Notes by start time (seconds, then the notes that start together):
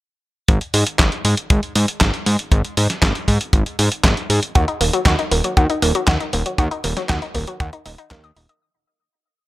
0.48 G#1, kick, closed hi-hat
0.61 closed hi-hat
0.74 G#2, open hi-hat
0.87 closed hi-hat
0.99 G#1, kick, snare, clap, closed hi-hat
1.12 closed hi-hat
1.25 G#2, open hi-hat
1.37 closed hi-hat
1.50 G#1, kick, closed hi-hat
1.63 closed hi-hat
1.76 G#2, open hi-hat
1.88 closed hi-hat
2.01 G#1, kick, snare, clap, closed hi-hat
2.14 closed hi-hat
2.26 G#2, open hi-hat
2.39 closed hi-hat
2.52 G#1, kick, closed hi-hat
2.65 closed hi-hat
2.77 G#2, open hi-hat
2.90 snare, closed hi-hat
3.02 G#1, kick, snare, clap, closed hi-hat
3.15 closed hi-hat
3.28 G#2, kick, open hi-hat
3.41 closed hi-hat
3.53 G#1, kick, closed hi-hat
3.66 closed hi-hat
3.79 G#2, open hi-hat
3.92 closed hi-hat
4.04 G#1, kick, snare, clap, closed hi-hat
4.17 closed hi-hat
4.30 G#2, open hi-hat
4.43 closed hi-hat
4.55 D#2 F#4, kick, closed hi-hat
4.68 D#4, closed hi-hat
4.81 D#1 A#3, open hi-hat
4.93 F#3, closed hi-hat
5.05 D#2 F#4, kick, snare, clap, closed hi-hat
5.19 D#4, closed hi-hat
5.31 D#1 A#3, open hi-hat
5.44 F#3, closed hi-hat
5.57 D#2 F#4, kick, closed hi-hat
5.70 D#4, closed hi-hat
5.82 D#1 A#3, open hi-hat
5.95 F#3, closed hi-hat
6.08 D#2 F#4, kick, snare, clap, closed hi-hat
6.20 D#4, closed hi-hat
6.33 D#1 A#3, open hi-hat
6.46 F#3, closed hi-hat
6.58 D#2 F#4, kick, closed hi-hat
6.71 D#4, closed hi-hat
6.84 D#1 A#3, open hi-hat
6.97 F#3, snare, closed hi-hat
7.09 D#2 F#4, kick, snare, clap, closed hi-hat
7.22 D#4, closed hi-hat
7.35 D#1 A#3, kick, open hi-hat
7.47 F#3, closed hi-hat
7.60 D#2 F#4, kick, closed hi-hat
7.73 D#4, closed hi-hat
7.86 D#1 D#4, open hi-hat
7.98 D#4, closed hi-hat
8.11 D#2 A#3, kick, snare, clap, closed hi-hat
8.24 D#5, closed hi-hat
8.36 D#1 D#4, open hi-hat
8.49 D#5, closed hi-hat